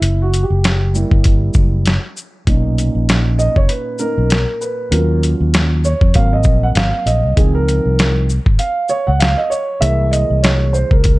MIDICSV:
0, 0, Header, 1, 4, 480
1, 0, Start_track
1, 0, Key_signature, -5, "major"
1, 0, Tempo, 612245
1, 18, Time_signature, 4, 2, 24, 8
1, 8774, End_track
2, 0, Start_track
2, 0, Title_t, "Grand piano"
2, 0, Program_c, 0, 0
2, 0, Note_on_c, 0, 64, 77
2, 171, Note_on_c, 0, 66, 80
2, 183, Note_off_c, 0, 64, 0
2, 335, Note_on_c, 0, 67, 72
2, 340, Note_off_c, 0, 66, 0
2, 735, Note_on_c, 0, 55, 54
2, 741, Note_on_c, 0, 58, 51
2, 746, Note_on_c, 0, 64, 62
2, 1025, Note_off_c, 0, 67, 0
2, 1425, Note_off_c, 0, 55, 0
2, 1428, Note_off_c, 0, 58, 0
2, 1430, Note_off_c, 0, 64, 0
2, 1934, Note_on_c, 0, 46, 59
2, 1938, Note_on_c, 0, 61, 50
2, 1943, Note_on_c, 0, 63, 62
2, 2655, Note_on_c, 0, 75, 95
2, 2795, Note_on_c, 0, 73, 93
2, 2801, Note_off_c, 0, 75, 0
2, 2889, Note_on_c, 0, 71, 86
2, 2899, Note_off_c, 0, 73, 0
2, 3125, Note_off_c, 0, 61, 0
2, 3131, Note_on_c, 0, 70, 99
2, 3132, Note_off_c, 0, 63, 0
2, 3137, Note_on_c, 0, 58, 50
2, 3137, Note_on_c, 0, 61, 44
2, 3141, Note_off_c, 0, 71, 0
2, 3143, Note_on_c, 0, 63, 51
2, 3353, Note_off_c, 0, 61, 0
2, 3354, Note_off_c, 0, 58, 0
2, 3357, Note_off_c, 0, 63, 0
2, 3615, Note_on_c, 0, 71, 82
2, 3629, Note_off_c, 0, 70, 0
2, 3824, Note_off_c, 0, 46, 0
2, 3848, Note_on_c, 0, 54, 56
2, 3849, Note_on_c, 0, 70, 73
2, 3855, Note_on_c, 0, 61, 49
2, 3859, Note_on_c, 0, 65, 60
2, 3864, Note_off_c, 0, 71, 0
2, 4076, Note_off_c, 0, 70, 0
2, 4542, Note_off_c, 0, 54, 0
2, 4545, Note_off_c, 0, 61, 0
2, 4547, Note_off_c, 0, 65, 0
2, 4584, Note_on_c, 0, 73, 85
2, 4814, Note_on_c, 0, 54, 50
2, 4820, Note_on_c, 0, 58, 52
2, 4824, Note_on_c, 0, 77, 95
2, 4827, Note_on_c, 0, 60, 63
2, 4828, Note_off_c, 0, 73, 0
2, 4962, Note_on_c, 0, 75, 88
2, 4966, Note_off_c, 0, 77, 0
2, 5200, Note_on_c, 0, 78, 91
2, 5208, Note_off_c, 0, 75, 0
2, 5240, Note_off_c, 0, 78, 0
2, 5302, Note_on_c, 0, 77, 89
2, 5537, Note_on_c, 0, 75, 87
2, 5547, Note_off_c, 0, 77, 0
2, 5745, Note_off_c, 0, 54, 0
2, 5747, Note_off_c, 0, 58, 0
2, 5751, Note_off_c, 0, 60, 0
2, 5771, Note_on_c, 0, 51, 52
2, 5778, Note_on_c, 0, 53, 51
2, 5778, Note_on_c, 0, 68, 83
2, 5781, Note_on_c, 0, 60, 58
2, 5785, Note_off_c, 0, 75, 0
2, 5917, Note_on_c, 0, 70, 96
2, 5923, Note_off_c, 0, 68, 0
2, 6366, Note_off_c, 0, 70, 0
2, 6463, Note_off_c, 0, 51, 0
2, 6467, Note_off_c, 0, 53, 0
2, 6468, Note_off_c, 0, 60, 0
2, 6735, Note_on_c, 0, 77, 95
2, 6973, Note_on_c, 0, 73, 97
2, 6984, Note_off_c, 0, 77, 0
2, 7110, Note_on_c, 0, 78, 93
2, 7121, Note_off_c, 0, 73, 0
2, 7209, Note_on_c, 0, 77, 96
2, 7217, Note_off_c, 0, 78, 0
2, 7349, Note_on_c, 0, 75, 99
2, 7359, Note_off_c, 0, 77, 0
2, 7447, Note_on_c, 0, 73, 90
2, 7456, Note_off_c, 0, 75, 0
2, 7688, Note_on_c, 0, 76, 102
2, 7689, Note_on_c, 0, 52, 56
2, 7693, Note_on_c, 0, 56, 49
2, 7699, Note_on_c, 0, 58, 57
2, 7700, Note_off_c, 0, 73, 0
2, 7916, Note_off_c, 0, 76, 0
2, 7929, Note_on_c, 0, 75, 86
2, 8175, Note_on_c, 0, 73, 79
2, 8181, Note_off_c, 0, 75, 0
2, 8412, Note_on_c, 0, 72, 82
2, 8424, Note_off_c, 0, 73, 0
2, 8554, Note_on_c, 0, 70, 76
2, 8560, Note_off_c, 0, 72, 0
2, 8774, Note_off_c, 0, 52, 0
2, 8774, Note_off_c, 0, 56, 0
2, 8774, Note_off_c, 0, 58, 0
2, 8774, Note_off_c, 0, 70, 0
2, 8774, End_track
3, 0, Start_track
3, 0, Title_t, "Fretless electric bass"
3, 0, Program_c, 1, 35
3, 12, Note_on_c, 1, 30, 99
3, 339, Note_off_c, 1, 30, 0
3, 394, Note_on_c, 1, 30, 90
3, 804, Note_off_c, 1, 30, 0
3, 873, Note_on_c, 1, 31, 73
3, 1164, Note_off_c, 1, 31, 0
3, 1214, Note_on_c, 1, 30, 98
3, 1540, Note_off_c, 1, 30, 0
3, 1938, Note_on_c, 1, 35, 101
3, 2262, Note_off_c, 1, 35, 0
3, 2313, Note_on_c, 1, 34, 80
3, 2723, Note_off_c, 1, 34, 0
3, 2791, Note_on_c, 1, 30, 83
3, 2879, Note_off_c, 1, 30, 0
3, 3275, Note_on_c, 1, 35, 83
3, 3481, Note_off_c, 1, 35, 0
3, 3855, Note_on_c, 1, 39, 104
3, 4180, Note_off_c, 1, 39, 0
3, 4237, Note_on_c, 1, 39, 89
3, 4646, Note_off_c, 1, 39, 0
3, 4713, Note_on_c, 1, 41, 70
3, 4800, Note_off_c, 1, 41, 0
3, 4824, Note_on_c, 1, 32, 85
3, 5056, Note_off_c, 1, 32, 0
3, 5056, Note_on_c, 1, 34, 80
3, 5261, Note_off_c, 1, 34, 0
3, 5296, Note_on_c, 1, 32, 89
3, 5416, Note_off_c, 1, 32, 0
3, 5534, Note_on_c, 1, 34, 89
3, 5656, Note_off_c, 1, 34, 0
3, 5677, Note_on_c, 1, 36, 80
3, 5762, Note_off_c, 1, 36, 0
3, 5779, Note_on_c, 1, 37, 96
3, 6102, Note_off_c, 1, 37, 0
3, 6158, Note_on_c, 1, 36, 84
3, 6567, Note_off_c, 1, 36, 0
3, 6634, Note_on_c, 1, 32, 83
3, 6720, Note_off_c, 1, 32, 0
3, 7120, Note_on_c, 1, 37, 87
3, 7323, Note_off_c, 1, 37, 0
3, 7696, Note_on_c, 1, 36, 118
3, 8020, Note_off_c, 1, 36, 0
3, 8076, Note_on_c, 1, 36, 79
3, 8486, Note_off_c, 1, 36, 0
3, 8554, Note_on_c, 1, 37, 83
3, 8774, Note_off_c, 1, 37, 0
3, 8774, End_track
4, 0, Start_track
4, 0, Title_t, "Drums"
4, 19, Note_on_c, 9, 42, 80
4, 97, Note_off_c, 9, 42, 0
4, 264, Note_on_c, 9, 42, 47
4, 264, Note_on_c, 9, 82, 46
4, 342, Note_off_c, 9, 42, 0
4, 342, Note_off_c, 9, 82, 0
4, 504, Note_on_c, 9, 42, 87
4, 511, Note_on_c, 9, 38, 108
4, 582, Note_off_c, 9, 42, 0
4, 589, Note_off_c, 9, 38, 0
4, 743, Note_on_c, 9, 82, 57
4, 821, Note_off_c, 9, 82, 0
4, 874, Note_on_c, 9, 36, 91
4, 952, Note_off_c, 9, 36, 0
4, 973, Note_on_c, 9, 42, 85
4, 983, Note_on_c, 9, 36, 89
4, 1051, Note_off_c, 9, 42, 0
4, 1062, Note_off_c, 9, 36, 0
4, 1205, Note_on_c, 9, 82, 54
4, 1215, Note_on_c, 9, 36, 81
4, 1284, Note_off_c, 9, 82, 0
4, 1293, Note_off_c, 9, 36, 0
4, 1455, Note_on_c, 9, 42, 72
4, 1469, Note_on_c, 9, 38, 94
4, 1533, Note_off_c, 9, 42, 0
4, 1548, Note_off_c, 9, 38, 0
4, 1700, Note_on_c, 9, 82, 50
4, 1778, Note_off_c, 9, 82, 0
4, 1937, Note_on_c, 9, 36, 97
4, 1938, Note_on_c, 9, 42, 75
4, 2016, Note_off_c, 9, 36, 0
4, 2017, Note_off_c, 9, 42, 0
4, 2183, Note_on_c, 9, 42, 48
4, 2183, Note_on_c, 9, 82, 49
4, 2261, Note_off_c, 9, 42, 0
4, 2261, Note_off_c, 9, 82, 0
4, 2421, Note_on_c, 9, 42, 83
4, 2428, Note_on_c, 9, 38, 103
4, 2500, Note_off_c, 9, 42, 0
4, 2507, Note_off_c, 9, 38, 0
4, 2660, Note_on_c, 9, 82, 56
4, 2738, Note_off_c, 9, 82, 0
4, 2793, Note_on_c, 9, 36, 88
4, 2871, Note_off_c, 9, 36, 0
4, 2893, Note_on_c, 9, 42, 89
4, 2971, Note_off_c, 9, 42, 0
4, 3124, Note_on_c, 9, 82, 52
4, 3203, Note_off_c, 9, 82, 0
4, 3373, Note_on_c, 9, 42, 72
4, 3388, Note_on_c, 9, 38, 98
4, 3452, Note_off_c, 9, 42, 0
4, 3466, Note_off_c, 9, 38, 0
4, 3619, Note_on_c, 9, 82, 52
4, 3697, Note_off_c, 9, 82, 0
4, 3857, Note_on_c, 9, 42, 83
4, 3936, Note_off_c, 9, 42, 0
4, 4103, Note_on_c, 9, 42, 46
4, 4103, Note_on_c, 9, 82, 46
4, 4182, Note_off_c, 9, 42, 0
4, 4182, Note_off_c, 9, 82, 0
4, 4342, Note_on_c, 9, 42, 82
4, 4349, Note_on_c, 9, 38, 108
4, 4420, Note_off_c, 9, 42, 0
4, 4427, Note_off_c, 9, 38, 0
4, 4581, Note_on_c, 9, 82, 54
4, 4660, Note_off_c, 9, 82, 0
4, 4714, Note_on_c, 9, 36, 87
4, 4793, Note_off_c, 9, 36, 0
4, 4814, Note_on_c, 9, 42, 89
4, 4825, Note_on_c, 9, 36, 88
4, 4893, Note_off_c, 9, 42, 0
4, 4903, Note_off_c, 9, 36, 0
4, 5044, Note_on_c, 9, 82, 54
4, 5056, Note_on_c, 9, 36, 82
4, 5123, Note_off_c, 9, 82, 0
4, 5134, Note_off_c, 9, 36, 0
4, 5295, Note_on_c, 9, 42, 67
4, 5309, Note_on_c, 9, 38, 103
4, 5373, Note_off_c, 9, 42, 0
4, 5388, Note_off_c, 9, 38, 0
4, 5541, Note_on_c, 9, 42, 53
4, 5541, Note_on_c, 9, 82, 49
4, 5619, Note_off_c, 9, 42, 0
4, 5619, Note_off_c, 9, 82, 0
4, 5779, Note_on_c, 9, 36, 104
4, 5779, Note_on_c, 9, 42, 87
4, 5858, Note_off_c, 9, 36, 0
4, 5858, Note_off_c, 9, 42, 0
4, 6025, Note_on_c, 9, 42, 45
4, 6025, Note_on_c, 9, 82, 49
4, 6103, Note_off_c, 9, 42, 0
4, 6103, Note_off_c, 9, 82, 0
4, 6264, Note_on_c, 9, 42, 85
4, 6271, Note_on_c, 9, 38, 106
4, 6342, Note_off_c, 9, 42, 0
4, 6349, Note_off_c, 9, 38, 0
4, 6504, Note_on_c, 9, 82, 54
4, 6582, Note_off_c, 9, 82, 0
4, 6634, Note_on_c, 9, 36, 83
4, 6713, Note_off_c, 9, 36, 0
4, 6734, Note_on_c, 9, 42, 95
4, 6813, Note_off_c, 9, 42, 0
4, 6967, Note_on_c, 9, 82, 53
4, 7045, Note_off_c, 9, 82, 0
4, 7216, Note_on_c, 9, 42, 77
4, 7231, Note_on_c, 9, 38, 101
4, 7295, Note_off_c, 9, 42, 0
4, 7309, Note_off_c, 9, 38, 0
4, 7461, Note_on_c, 9, 82, 51
4, 7539, Note_off_c, 9, 82, 0
4, 7699, Note_on_c, 9, 42, 84
4, 7777, Note_off_c, 9, 42, 0
4, 7941, Note_on_c, 9, 42, 48
4, 7941, Note_on_c, 9, 82, 49
4, 8020, Note_off_c, 9, 42, 0
4, 8020, Note_off_c, 9, 82, 0
4, 8183, Note_on_c, 9, 42, 80
4, 8190, Note_on_c, 9, 38, 110
4, 8261, Note_off_c, 9, 42, 0
4, 8268, Note_off_c, 9, 38, 0
4, 8421, Note_on_c, 9, 82, 56
4, 8499, Note_off_c, 9, 82, 0
4, 8554, Note_on_c, 9, 36, 95
4, 8632, Note_off_c, 9, 36, 0
4, 8654, Note_on_c, 9, 42, 86
4, 8664, Note_on_c, 9, 36, 96
4, 8732, Note_off_c, 9, 42, 0
4, 8743, Note_off_c, 9, 36, 0
4, 8774, End_track
0, 0, End_of_file